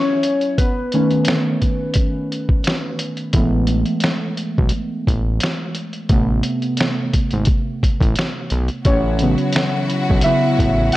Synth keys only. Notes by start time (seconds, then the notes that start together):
Already playing: F#3 B3 C#4 C#5
0.58 B3 B4
0.93 D#3 A3 C#4
3.35 E3 G#3 A3 B3
6.11 C3 A3 B3
8.86 C#4 C#5
9.21 C#3 F#3 B3
10.24 C#3 F#3 B3 E4 E5
10.93 F#5